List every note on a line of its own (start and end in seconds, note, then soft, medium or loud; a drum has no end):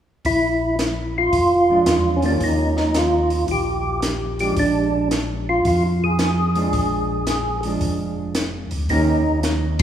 0.25 1.29 A#1 medium
0.25 0.76 E4 medium
0.25 kick soft
0.25 open hi-hat soft
0.79 snare medium
0.79 closed hi-hat soft
1.18 2.19 F4 loud
1.33 1.83 F1 medium
1.33 kick soft
1.33 open hi-hat soft
1.69 2.20 F3 medium
1.69 2.20 G#3 medium
1.69 2.20 D4 medium
1.86 2.37 E2 medium
1.86 snare medium
1.86 closed hi-hat medium
2.16 2.24 C#4 medium
2.22 2.92 D#3 medium
2.22 2.92 A#3 medium
2.22 2.92 C#4 medium
2.22 2.33 D4 medium
2.22 2.92 G4 medium
2.22 open hi-hat soft
2.40 3.45 D#2 medium
2.40 2.98 D#4 medium
2.40 kick soft
2.40 open hi-hat soft
2.77 snare soft
2.94 3.47 F4 medium
2.94 snare medium
2.94 closed hi-hat soft
3.30 open hi-hat soft
3.48 4.53 A#1 medium
3.48 4.01 G4 medium
3.48 kick soft
3.48 open hi-hat soft
4.02 snare medium
4.02 closed hi-hat medium
4.39 5.08 F3 medium
4.39 5.08 G#3 medium
4.39 5.09 D4 medium
4.39 4.57 G4 medium
4.39 open hi-hat soft
4.57 5.61 A#1 medium
4.57 5.09 D4 medium
4.57 kick soft
4.57 open hi-hat soft
5.11 snare medium
5.11 closed hi-hat medium
5.49 5.66 F4 medium
5.65 6.69 F2 medium
5.65 5.83 F4 medium
5.65 kick soft
5.65 open hi-hat soft
6.04 7.61 G#4 medium
6.19 snare medium
6.19 closed hi-hat medium
6.55 7.24 F3 medium
6.55 7.24 G#3 medium
6.55 7.24 D4 medium
6.55 open hi-hat soft
6.73 7.77 A#1 medium
6.73 kick soft
6.73 open hi-hat soft
7.27 snare medium
7.27 closed hi-hat medium
7.63 8.32 F3 medium
7.63 8.32 G#3 medium
7.63 8.33 D4 medium
7.63 open hi-hat soft
7.81 8.67 F1 medium
7.81 kick soft
7.81 open hi-hat soft
8.35 snare medium
8.35 closed hi-hat medium
8.71 8.88 D2 medium
8.71 open hi-hat soft
8.89 9.82 D#2 medium
8.89 9.23 D#3 medium
8.89 9.23 A#3 medium
8.89 9.23 C#4 medium
8.89 9.40 D#4 loud
8.89 9.23 G4 medium
8.89 kick soft
8.89 open hi-hat soft
9.43 snare medium
9.43 closed hi-hat soft